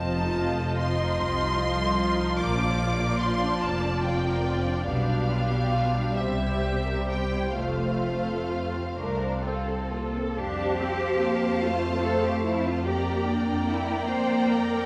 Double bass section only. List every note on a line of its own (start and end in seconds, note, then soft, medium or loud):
0.00 0.98 F1 medium
1.18 2.18 C2 medium
2.39 3.42 A#1 medium
3.63 4.66 F1 medium
4.86 5.94 B1 medium
6.17 7.32 C2 medium
7.55 8.74 F1 medium
8.98 10.15 C2 medium
10.38 14.86 F2 medium